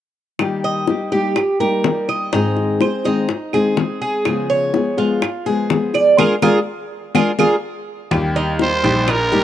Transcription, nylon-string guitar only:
0.39 0.87 D#3 medium
0.39 0.87 G3 medium
0.39 0.87 A#3 medium
0.39 0.88 D#4 medium
0.39 0.88 G4 medium
0.88 1.11 G3 soft
0.88 1.12 A#3 soft
0.88 1.12 D#4 medium
0.88 1.11 G4 medium
1.12 1.36 G3 medium
1.12 1.36 A#3 medium
1.12 1.36 D#4 medium
1.12 1.35 G4 medium
1.37 muted nylon-string guitar stroke medium
1.60 1.83 G3 medium
1.60 1.84 A#3 medium
1.60 1.84 D#4 medium
1.60 1.83 G4 medium
1.85 2.32 G3 soft
1.85 2.32 A#3 medium
1.85 2.33 D#4 soft
1.85 2.33 G4 medium
2.33 2.80 G#2 medium
2.33 2.80 D#3 medium
2.33 2.79 G#3 medium
2.33 2.80 C4 medium
2.33 2.81 D#4 medium
2.33 2.81 G#4 medium
2.81 3.04 G#3 soft
2.81 3.05 C4 soft
2.81 3.05 D#4 medium
2.81 3.04 G#4 medium
3.05 3.29 D#3 medium
3.05 3.29 G#3 medium
3.05 3.29 C4 medium
3.05 3.29 D#4 medium
3.05 3.28 G#4 medium
3.29 muted nylon-string guitar stroke medium
3.54 3.78 D#3 medium
3.54 3.76 G#3 medium
3.54 3.77 C4 medium
3.54 3.77 D#4 medium
3.54 3.77 G#4 medium
3.77 4.25 G#3 medium
3.77 4.25 C4 medium
3.77 4.25 D#4 soft
3.77 4.26 G#4 soft
4.26 4.73 C#3 medium
4.26 4.73 F3 medium
4.26 4.74 G#3 medium
4.26 4.74 B3 medium
4.26 4.74 G#4 medium
4.74 4.97 F3 soft
4.74 4.98 G#3 soft
4.74 4.97 B3 medium
4.74 4.96 G#4 medium
4.97 5.22 F3 medium
4.97 5.22 G#3 medium
4.97 5.22 B3 medium
4.97 5.21 G#4 medium
5.22 muted nylon-string guitar stroke medium
5.46 5.69 F3 medium
5.46 5.70 G#3 medium
5.46 5.70 B3 medium
5.46 5.69 G#4 medium
5.70 6.18 F3 medium
5.70 6.17 G#3 medium
5.70 6.18 B3 medium
5.70 6.19 G#4 medium
6.18 6.34 G#3 medium
6.18 6.34 A#3 medium
6.18 6.34 D4 medium
6.43 6.58 G#3 medium
6.43 6.59 A#3 medium
6.43 6.59 D4 medium
7.15 7.31 G#3 medium
7.15 7.31 A#3 medium
7.15 7.31 D4 medium
7.39 7.55 G#3 medium
7.39 7.55 A#3 loud
7.39 7.55 D4 medium
8.11 8.59 D#3 medium
8.11 8.58 G3 medium
8.11 8.59 A#3 medium
8.11 8.59 D#4 medium
8.11 8.60 G4 medium
8.59 8.83 G3 soft
8.59 8.83 A#3 soft
8.59 8.83 D#4 soft
8.59 8.82 G4 medium
8.83 9.07 G3 medium
8.83 9.08 A#3 medium
8.83 9.07 D#4 medium
8.83 9.07 G4 medium
9.08 muted nylon-string guitar stroke medium
9.32 9.44 G3 medium
9.32 9.44 A#3 medium
9.32 9.44 D#4 medium
9.32 9.44 G4 medium

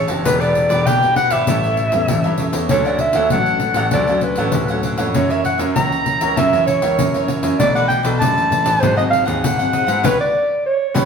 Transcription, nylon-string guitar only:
0.00 0.23 E3 medium
0.10 0.67 B3 medium
0.10 0.67 D4 medium
0.10 0.67 G4 medium
0.27 0.85 E3 medium
0.71 0.97 B3 medium
0.71 0.97 D4 medium
0.71 0.98 G4 medium
0.88 1.46 B2 medium
1.03 1.44 B3 medium
1.03 1.44 D4 medium
1.03 1.44 G4 medium
1.49 2.07 A2 medium
1.49 1.90 G3 medium
1.49 1.90 C#4 medium
1.49 1.90 E4 medium
1.94 2.20 G3 medium
1.94 2.20 C#4 medium
1.94 2.20 E4 medium
2.11 2.68 E3 medium
2.27 2.67 G3 medium
2.27 2.67 C#4 medium
2.27 2.67 E4 medium
2.72 3.29 D3 medium
2.72 3.11 F#3 medium
2.72 3.11 A3 medium
2.72 3.11 C#4 medium
3.33 3.91 A2 medium
3.33 3.58 F#3 medium
3.33 3.58 A3 medium
3.33 3.59 C#4 medium
3.62 3.80 F#3 medium
3.62 3.81 A3 medium
3.62 3.81 C#4 medium
3.94 4.52 D3 medium
3.94 4.04 F#3 medium
3.94 4.04 A3 soft
3.94 4.04 C#4 medium
4.09 4.65 F#3 medium
4.09 4.65 A3 medium
4.09 4.66 C#4 medium
4.54 5.12 A2 medium
4.70 4.96 F#3 medium
4.70 4.96 A3 medium
4.70 4.96 C#4 medium
4.99 5.56 E3 medium
4.99 5.56 A#3 medium
4.99 5.56 C#4 medium
5.16 5.74 F#2 medium
5.76 6.35 C#3 medium
5.76 5.95 E3 medium
5.76 5.95 A#3 medium
5.76 5.95 C#4 medium
6.06 6.48 E3 medium
6.06 6.48 A#3 medium
6.06 6.48 C#4 medium
6.38 6.96 F#2 medium
6.53 7.09 E3 medium
6.53 7.10 A#3 medium
6.53 7.09 C#4 medium
6.98 7.57 C#3 medium
7.14 7.55 E3 medium
7.14 7.55 A#3 medium
7.14 7.55 C#4 medium
7.59 8.18 B2 medium
7.59 7.99 E3 medium
7.59 7.99 A3 medium
7.59 7.99 D4 medium
8.20 8.79 F#2 medium
8.20 8.46 E3 medium
8.20 8.47 A3 medium
8.20 8.47 D4 medium
8.50 8.79 E3 medium
8.50 8.79 A3 medium
8.50 8.79 D4 medium
8.81 9.40 G#2 medium
8.81 8.92 F#3 medium
8.81 8.93 C4 medium
8.81 8.93 D#4 medium
8.98 9.54 F#3 medium
8.98 9.54 C4 medium
8.98 9.54 D#4 medium
9.43 10.01 D#3 medium
9.59 9.85 F#3 medium
9.59 9.84 C4 medium
9.59 9.85 D#4 medium
9.87 10.02 G3 medium
9.87 10.03 B3 medium
9.87 10.04 E4 medium
10.03 10.14 G3 medium
10.03 10.14 B3 medium
10.03 10.14 C#4 loud
10.95 11.05 G3 loud
10.95 11.05 B3 medium
10.95 11.05 C#4 medium

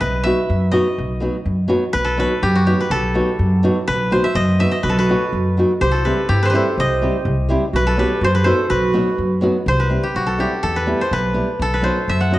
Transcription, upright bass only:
0.01 0.30 B1 medium
0.50 0.79 F#2 loud
0.98 1.27 B1 medium
1.46 1.75 F#2 medium
1.95 2.24 B1 medium
2.42 2.71 F#2 loud
2.90 3.19 B1 medium
3.39 3.68 F#2 loud
3.88 4.17 B1 medium
4.35 4.64 F#2 loud
4.84 5.13 B1 loud
5.33 5.62 F#2 medium
5.81 6.10 C2 loud
6.29 6.58 G2 loud
6.78 7.07 C2 loud
7.25 7.54 C2 loud
7.73 8.02 B1 loud
8.21 8.50 F#2 loud
8.70 8.99 B1 medium
9.18 9.47 F#2 medium
9.66 9.95 C2 loud
10.15 10.44 B1 loud
10.63 10.92 E2 loud
11.11 11.40 B1 medium
11.59 11.88 B1 loud
12.08 12.37 F#2 medium

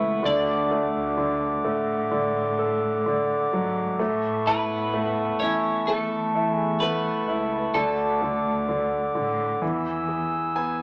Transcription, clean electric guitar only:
0.00 0.22 B3 medium
0.00 0.26 B4 medium
0.25 2.09 D4 medium
0.25 2.09 D5 loud
4.47 5.37 B3 medium
4.47 5.39 B4 medium
5.40 5.85 C#4 medium
5.40 5.88 C#5 loud
5.87 6.78 A3 medium
5.87 6.52 A4 medium
6.52 6.83 G#4 medium
6.80 7.72 B3 medium
6.80 7.77 B4 medium
7.74 8.65 A3 medium
7.74 8.64 A4 medium

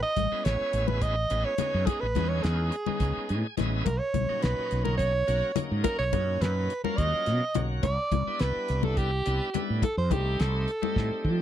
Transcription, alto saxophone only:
0.02 0.46 D#5 loud
0.44 0.89 C#5 loud
0.87 1.04 B4 medium
1.02 1.46 D#5 loud
1.45 1.88 C#5 medium
1.86 2.02 G#4 medium
2.00 2.30 B4 medium
2.29 2.44 C#5 medium
2.43 3.57 G#4 medium
3.84 4.00 A#4 medium
3.98 4.44 C#5 medium
4.42 4.84 B4 medium
4.84 4.97 A#4 medium
4.98 5.58 C#5 loud
5.84 5.97 A#4 loud
5.99 6.43 C#5 loud
6.42 6.83 B4 loud
6.84 6.99 A#4 medium
6.97 7.62 D#5 loud
7.83 8.42 D5 loud
8.40 8.85 B4 medium
8.84 8.99 A4 medium
8.97 9.61 G4 medium
9.83 9.96 A4 medium
9.98 10.13 C5 medium
10.12 10.42 G4 medium
10.41 11.42 A4 medium

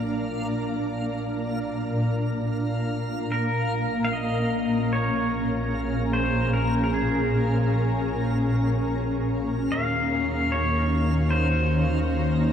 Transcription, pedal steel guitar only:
3.32 4.04 A#4 medium
4.05 4.11 F5 medium
4.13 4.95 D#5 medium
4.93 6.13 C#5 medium
6.13 6.53 C5 medium
6.53 6.82 A#4 medium
6.84 6.91 A#4 medium
6.94 9.28 G#4 medium
9.72 10.54 F5 loud
10.52 11.30 C#5 medium
11.31 12.53 C5 medium

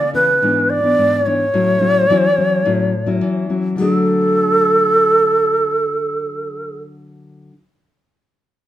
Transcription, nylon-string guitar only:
0.00 0.39 C#3 medium
0.13 0.30 E3 medium
0.13 0.30 A#3 medium
0.13 0.30 C#4 medium
0.42 0.95 G#2 medium
0.42 0.79 E3 medium
0.42 0.80 B3 medium
0.42 0.80 D4 medium
0.82 1.21 E3 medium
0.82 1.21 B3 medium
0.82 1.21 D4 medium
0.98 1.51 G#2 medium
1.26 1.44 E3 medium
1.26 1.44 B3 medium
1.26 1.44 D4 medium
1.54 2.07 A2 medium
1.54 1.77 F#3 medium
1.54 1.78 C#4 soft
1.54 1.78 E4 medium
1.80 2.05 F#3 medium
1.80 2.05 C#4 medium
1.80 2.05 E4 medium
2.10 2.63 E3 medium
2.10 2.26 F#3 medium
2.10 2.26 C#4 medium
2.10 2.27 E4 medium
2.38 2.61 F#3 medium
2.38 2.61 C#4 medium
2.38 2.61 E4 medium
2.65 3.19 A2 medium
2.65 2.92 F#3 medium
2.65 2.92 C#4 medium
2.65 2.92 E4 medium
3.06 3.45 F#3 medium
3.06 3.45 C#4 medium
3.06 3.45 E4 medium
3.21 3.75 E3 medium
3.49 3.75 F#3 medium
3.49 3.76 C#4 medium
3.49 3.76 E4 medium
3.76 7.51 D3 medium
3.76 7.52 F#3 medium
3.80 7.53 A3 medium
3.80 7.54 D4 medium

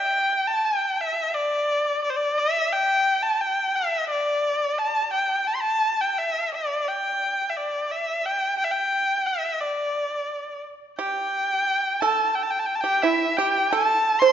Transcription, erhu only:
0.00 0.49 G5 medium
0.47 0.67 A5 medium
0.65 1.03 G5 medium
1.01 1.36 E5 medium
1.34 2.03 D5 medium
2.03 2.11 D5 medium
2.10 2.18 C5 medium
2.16 2.40 D5 medium
2.38 2.74 E5 medium
2.73 3.24 G5 medium
3.23 3.42 A5 medium
3.41 3.77 G5 medium
3.76 4.09 E5 medium
4.10 4.80 D5 medium
4.78 5.12 A5 medium
5.13 5.49 G5 medium
5.47 5.57 A5 medium
5.55 5.63 C6 medium
5.61 6.02 A5 medium
6.01 6.20 G5 medium
6.19 6.53 E5 medium
6.54 6.90 D5 medium
6.89 7.51 G5 medium
7.50 7.58 E5 soft
7.57 7.93 D5 medium
7.91 8.27 E5 medium
8.26 8.57 G5 medium
8.58 8.66 G5 medium
8.64 8.73 E5 medium
8.71 9.28 G5 medium
9.26 9.62 E5 medium
9.60 10.63 D5 medium
10.99 12.02 G5 medium
12.01 12.36 A5 medium
12.35 12.45 G5 medium
12.43 12.52 A5 medium
12.51 12.61 G5 medium
12.59 12.67 A5 medium
12.66 12.77 G5 medium
12.75 12.82 A5 medium
12.81 13.04 G5 medium
13.02 13.39 E5 medium
13.37 13.72 G5 medium
13.71 14.21 A5 medium
14.19 14.32 C6 medium

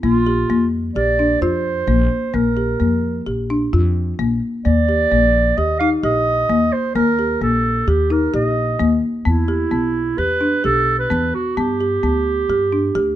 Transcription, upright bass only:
0.03 0.43 A#1 medium
0.50 0.89 F2 medium
0.95 1.35 A#1 medium
1.41 1.81 F2 medium
1.87 2.07 A#1 medium
2.34 2.74 A#1 medium
2.81 3.20 F2 medium
3.27 3.66 A#1 medium
3.73 4.12 F2 medium
4.19 4.39 A#1 medium
4.66 5.05 D#2 medium
5.11 5.51 A#1 medium
5.57 5.97 D#2 medium
6.03 6.43 A#1 medium
6.49 6.69 D#2 medium
6.95 7.35 D#2 medium
7.41 7.81 A#1 medium
7.87 8.27 D#2 medium
8.34 8.73 A#1 medium
8.80 9.00 D#2 medium
9.26 9.66 E2 medium
9.72 10.12 B1 medium
10.18 10.58 E2 medium
10.65 11.04 B1 medium
11.11 11.31 E2 medium
11.57 11.97 G2 medium
12.03 12.43 D2 medium
12.49 12.89 G2 medium
12.95 13.16 D2 medium

